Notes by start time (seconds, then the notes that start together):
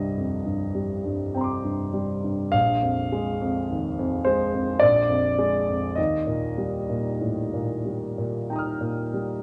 Already playing: C2 G2 G3 D#5
0.17 F2
0.45 G2
0.75 G3
1.05 G2
1.34 C4 G5 A#5
1.41 C6 D6
1.64 G2
1.93 G3
2.24 G2
2.52 A#1 F5
2.82 F2
3.12 G#3
3.41 F2
3.71 D#2
3.99 F2
4.25 G#3 C5
4.53 F2
4.79 A#1 D5
5.09 F2
5.39 G#3
5.69 F2
5.95 D#2 D#5
6.27 A#2
6.58 G3
6.90 A#2
7.21 A2
7.54 A#2
7.85 G3
8.18 A#2
8.50 D#4 G5 A#5
8.56 D#6 F6
8.81 A#2
9.14 G3